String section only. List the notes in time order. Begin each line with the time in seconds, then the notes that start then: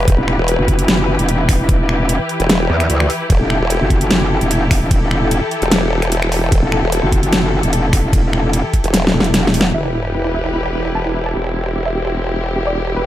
Already playing: E3 E4 G4 B4
3.30 A4
9.74 E3 E4 G4 B4
11.35 C4 G4
12.96 E3 B4